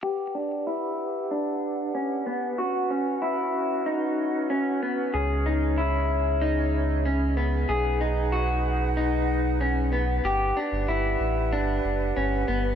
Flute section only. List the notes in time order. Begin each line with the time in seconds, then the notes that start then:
0.03 G4 B4 F#5
2.58 C#4 F#4
5.15 G#4 C#5
7.69 D#4 B4 F#5
10.24 G4 B4 F#5